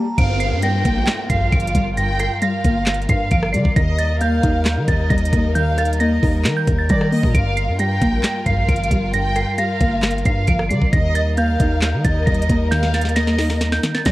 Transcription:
Already playing: D#3 G3 A#3 D#4 A#5, swell
0.18 G1 G2 G3 F4 A#4 F5 D7, kick, closed hi-hat, downlifter
0.40 C7, closed hi-hat
0.52 G2
0.63 G3 G5 A#6, closed hi-hat
0.85 A#1 A#3, kick, closed hi-hat
1.07 snare, clap, closed hi-hat
1.30 A#1 G2 F5 C7, kick, closed hi-hat
1.52 G1 F3 D7, kick, closed hi-hat
1.60 closed hi-hat
1.67 closed hi-hat
1.75 G1 G3, kick, closed hi-hat
1.97 G2 G5 A#6, closed hi-hat
2.19 C7, cross-stick, closed hi-hat
2.42 G3 F5 A#6, closed hi-hat
2.64 G1 A#3, kick, closed hi-hat
2.86 snare, clap, closed hi-hat
2.94 closed hi-hat
3.02 closed hi-hat
3.09 G2 F5 C7, kick, closed hi-hat
3.31 G1 F3 D7, kick, closed hi-hat
3.43 cross-stick
3.53 D3 G3 D5 C7, closed hi-hat
3.65 G1, kick
3.76 D#2 D#3 D#4 D#5 A#6, kick, closed hi-hat
3.98 A6, closed hi-hat
4.21 A#3 F5 G6, closed hi-hat
4.43 D#2 D#4, kick, closed hi-hat
4.65 snare, clap, closed hi-hat
4.77 D#3
4.88 D#2 D#3 D#5 A6, kick, closed hi-hat
5.10 D#2 G3 A#6, kick, closed hi-hat
5.18 closed hi-hat
5.25 closed hi-hat
5.33 D#2 A#3, kick, closed hi-hat
5.55 D#3 F5 G6, closed hi-hat
5.78 A6, cross-stick, closed hi-hat
5.85 closed hi-hat
5.93 closed hi-hat
6.00 A#3 D#5 A#6, closed hi-hat
6.23 D#2 D#4, kick, open hi-hat
6.44 D#3, snare, clap, closed hi-hat
6.56 G6
6.67 D#2 D#3, kick, closed hi-hat
6.78 A6
6.89 D#3 G3 D5 A#6, kick, closed hi-hat
7.01 cross-stick
7.12 A#3 D#5, open hi-hat
7.23 A#2, kick
7.34 G1 G2 F4 F5 D7, kick, closed hi-hat
7.57 C7, closed hi-hat
7.68 G2
7.79 G3 G5 A#6, closed hi-hat
8.02 A#1 A#3, kick, closed hi-hat
8.23 snare, clap, closed hi-hat
8.46 A#1 G2 F5 C7, kick, closed hi-hat
8.69 G1 F3 D7, kick, closed hi-hat
8.76 closed hi-hat
8.84 closed hi-hat
8.91 G1 G3, kick, closed hi-hat
9.13 G2 G5 A#6, closed hi-hat
9.36 C7, cross-stick, closed hi-hat
9.58 G3 F5 A#6, closed hi-hat
9.81 G1 A#3, kick, closed hi-hat
10.02 snare, clap, closed hi-hat
10.11 closed hi-hat
10.18 closed hi-hat
10.25 G2 F5 C7, kick, closed hi-hat
10.47 G1 F3 D7, kick, closed hi-hat
10.59 cross-stick
10.69 D3 G3 D5 C7, closed hi-hat
10.81 G1, kick
10.93 D#2 D#3 G3 D#4 A#4 D#5 A#6, kick, closed hi-hat
11.15 A6, closed hi-hat
11.37 A#3 F5 G6, closed hi-hat
11.60 D#2 D#4, kick, closed hi-hat
11.81 snare, clap, closed hi-hat
11.93 D#3
12.04 D#2 D#3 D#5 A6, kick, closed hi-hat
12.26 D#2 G3 A#6, kick, closed hi-hat
12.34 closed hi-hat
12.42 closed hi-hat
12.49 D#2 A#3, kick, closed hi-hat
12.71 D#3 F5 G6, snare, closed hi-hat
12.83 snare
12.94 A6, snare, closed hi-hat
13.02 snare, closed hi-hat
13.09 closed hi-hat
13.16 A#3 D#5 A#6, snare, closed hi-hat
13.28 snare
13.39 D#4, snare, open hi-hat
13.50 snare
13.61 snare, closed hi-hat
13.73 G6, snare
13.84 D#3, snare, closed hi-hat
13.95 A6, snare
14.05 D#3 G3 D5 A#6, kick, snare, closed hi-hat

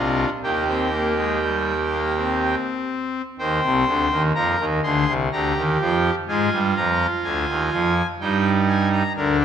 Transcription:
Already playing: C2 C3 D4 F4 D#5
0.43 D#2 D#3 A#3 G4 G5
0.67 C4
0.92 A#3
1.17 G#3
1.42 G3
1.91 A#3
2.16 C4
3.39 D#2 D#3 C5 G5
3.63 C2 C3
3.87 D2 D3
4.11 D#2 D#3
4.34 F2 F3 A#4 A#5
4.59 D#2 D#3
4.83 D2 D3 G#4 C6
5.07 C2 C3
5.32 D2 D3 G4 A#5
5.56 D#2 D#3
5.80 F2 F3 G5
6.28 G#2 G#3 F4 G#5
6.52 G2 G3
6.76 F2 F3 A#5
7.24 D2 D3 G#5
7.49 D#2 D#3
7.72 F2 F3
8.21 G2 G3 D#4 G5
8.68 G#5
8.92 A#5
9.16 D2 D3 D4 A#4
9.40 G4

